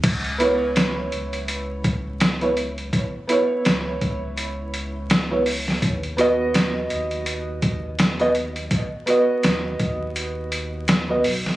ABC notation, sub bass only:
X:1
M:4/4
L:1/8
Q:"Swing 16ths" 1/4=83
K:C#m
V:1 name="Sub bass" clef=bass
C,,3 C,,4- C,, | z2 C,, C,,4- C,, | D,,3 D,,4- D,, | z2 D,, D,,4 B,,, |]